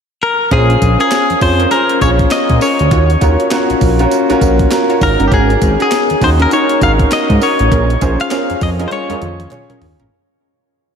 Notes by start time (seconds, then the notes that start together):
0.23 A#4
0.51 A#1 C#4 F4 G#4 A#4 C5, kick, closed hi-hat
0.70 closed hi-hat
0.82 A#1, kick, closed hi-hat, tambourine
0.99 C#4 G#4 A#4, closed hi-hat
1.11 snare, clap, closed hi-hat, tambourine
1.30 F2, closed hi-hat
1.41 F2 C#4 F4 G#4 C5 C#5, kick, open hi-hat, tambourine
1.59 C#4 G#4 A#4, closed hi-hat
1.71 C#4 F4 G#4 A#4 C5, closed hi-hat, tambourine
1.89 closed hi-hat
2.01 A#1 C#4 F4 G#4 C#5, kick, closed hi-hat, tambourine
2.19 kick, closed hi-hat
2.31 D#5, snare, clap, closed hi-hat, tambourine
2.49 A#2, kick, closed hi-hat
2.61 C#4 G#4 A#4 C#5, open hi-hat, tambourine
2.79 D2, closed hi-hat
2.91 D#2 F4 F#4 C#5, kick, closed hi-hat
3.10 closed hi-hat
3.21 D#2 C#4 F4 F#4 A#4 C#5, kick, closed hi-hat, tambourine
3.40 closed hi-hat
3.51 C#4 F4 F#4 A#4 C#5, snare, clap, closed hi-hat, tambourine
3.70 A#1, closed hi-hat
3.81 A#1, kick, open hi-hat, tambourine
3.99 C#4 F4 F#4 A#4 C#5, closed hi-hat
4.11 closed hi-hat, tambourine
4.29 A#1 C#4 F4 F#4 A#4 C#5, closed hi-hat
4.41 A#1, kick, closed hi-hat, tambourine
4.59 kick, closed hi-hat
4.71 C#4 F4 F#4 A#4, snare, clap, closed hi-hat, tambourine
4.89 F4 F#4 C#5, closed hi-hat
5.01 G#1 C#4 D#4 F#4 A#4, kick, open hi-hat, tambourine
5.19 G1 C#4 F#4 A#4, closed hi-hat
5.28 C#4 F#4 G4
5.32 G#1 G#4 A#4, kick, closed hi-hat
5.50 closed hi-hat
5.61 G#1, kick, closed hi-hat, tambourine
5.80 C#4 F#4 G#4 A#4, closed hi-hat
5.91 snare, clap, closed hi-hat, tambourine
6.10 D#2, closed hi-hat
6.21 D#2 C#4 D#4 F#4 G#4 C5, kick, open hi-hat, tambourine
6.39 C#4 F#4 A#4, closed hi-hat
6.51 C#4 D#4 F#4 A#4 C#5, closed hi-hat, tambourine
6.69 closed hi-hat
6.82 G#1 C#4 D#4 F#4 A#4 F5, kick, closed hi-hat, tambourine
7.00 kick, closed hi-hat
7.11 D#5, snare, clap, closed hi-hat, tambourine
7.30 G#2, kick, closed hi-hat
7.41 C#4 F#4 A#4 C#5, open hi-hat, tambourine
7.59 A1, closed hi-hat
7.71 A#1 C#4 G#4 A#4, kick, closed hi-hat
7.90 closed hi-hat
8.01 A#1 C#4 F4 G#4 A#4 C5, kick, closed hi-hat, tambourine
8.20 F5, closed hi-hat
8.31 C#4 F4 G#4 A#4 C5, snare, clap, closed hi-hat, tambourine
8.50 F2, closed hi-hat
8.61 F2 D#5, kick, open hi-hat, tambourine
8.79 C#4 F4 G#4 A#4 D#5, closed hi-hat
8.88 C5, closed hi-hat, high tom
8.92 C#5
9.09 F2 C#4 F4 G#4 A#4 C#5, closed hi-hat, high tom
9.22 F2, closed hi-hat, mid tom
9.40 closed hi-hat, mid tom
9.51 C#4 F4 G#4 C#5, clap, closed hi-hat, mid tom
9.69 C#4 G#4 A#4, closed hi-hat, mid tom
9.82 D#2, floor tom, open hi-hat
10.00 A1 C#4 G#4 A#4, closed hi-hat, floor tom